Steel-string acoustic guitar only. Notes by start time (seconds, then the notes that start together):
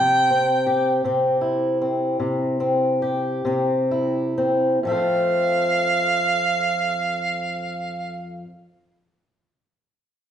Already playing: C3 C4
0.30 C4
0.66 G4
1.04 C3 C4
1.41 E4
1.81 C4
2.20 C3
2.60 C4
3.02 G4
3.45 C3 C4
3.91 E4
4.38 C4
4.83 F2 F3 A3
4.89 C4 A4